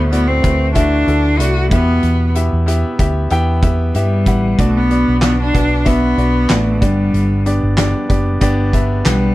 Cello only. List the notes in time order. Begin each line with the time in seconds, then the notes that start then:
0.10 B3
0.28 C4
0.74 D4
1.38 F#4
1.72 B3
3.95 G3
4.58 A3
4.77 B3
5.22 B3
5.41 D4
5.87 B3
6.51 A3
6.84 G3
9.06 G3